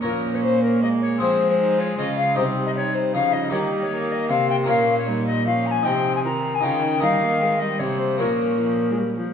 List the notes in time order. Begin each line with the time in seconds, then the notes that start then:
0.01 A#2 F3 C#4 A#4
0.34 C#5
0.43 A#3 C5
0.62 A#4
0.82 G#3 A#3 D#5
1.01 C#5
1.18 F3 C4 G#4 C5
1.49 C5
1.59 D#4
1.78 F4 C#5
1.98 C#3 F4 D#5
2.17 F5
2.35 C3 G3 D#4 G4 C5
2.66 D#5
2.75 D#4 C#5
2.94 C5
3.14 C#3 F3 F5
3.32 D#5
3.50 D#3 G3 A#3 D#4 G4 C#5
3.82 C#5
3.91 A#3
4.11 D#5
4.29 C3 C4 F5
4.49 G5
4.64 A#2 A#3 C#4 F4
4.68 A#2 A#3 C#4 F5
4.97 C#5
5.07 G3 D#4
5.26 D#5
5.46 F3 C#4 F5
5.66 A#5
5.71 G#5
5.83 C3 C4 D#4 G5
6.15 G#5
6.24 D#3 C4 A#5
6.54 G#5
6.61 C#3 D#3 D#4 F4 G5
6.82 D#4
6.99 D#3 G3 A#3 D#4 F5
7.23 A#3
7.41 G#3 C4
7.59 G3 D#5
7.78 C3 A#3 C#5
7.98 C5
8.18 A#2 F3 A#3 C#4 A#4
8.60 F3
8.90 G#3
8.99 G3
9.18 F3